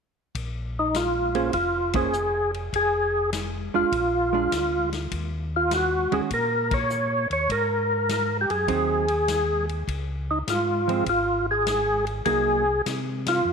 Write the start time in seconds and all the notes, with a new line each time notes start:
0.35 A#1, kick, ride
0.79 D#4
0.94 F4, snare, hi-hat pedal, ride
1.35 A#3 C#4 G#4 C5, ride
1.53 F1 F4, kick, ride
1.93 A#3 C#4 G#4 C5, kick, ride
2.13 hi-hat pedal
2.54 ride
2.73 F1 G#4, kick, ride
3.33 snare, hi-hat pedal, ride
3.74 F1 G#3 D4 F4
3.92 A#1, kick, ride
4.33 G#3 D4 F4
4.52 D2, snare, hi-hat pedal, ride
4.92 snare, ride
5.11 D#2, kick, ride
5.56 F4
5.71 F#4, snare, hi-hat pedal, ride
6.11 D#2 D#3 G#3 C#4 F#4 G#4, ride
6.31 A#2 A#4, kick, ride
6.71 C#5, kick, ride
6.90 hi-hat pedal
7.30 D#2 C#5, ride
7.49 G#2 A#4, kick, ride
8.09 snare, hi-hat pedal, ride
8.41 G4
8.50 F#2 G#4, ride
8.68 D#2 F#3 C4 D#4, kick, ride
9.08 ride
9.28 snare, hi-hat pedal, ride
9.69 ride
9.87 C#2, kick, ride
10.31 D#4
10.48 G#2 F4, snare, hi-hat pedal, ride
10.88 F3 G#3 C4, ride
11.06 G#1 F4, kick, ride
11.51 G#4
11.67 snare, hi-hat pedal, ride
12.07 ride
12.26 C2 F#3 A#3 D#4 G#4, kick, ride
12.86 C3, snare, hi-hat pedal, ride
13.26 F4, snare, ride
13.45 F2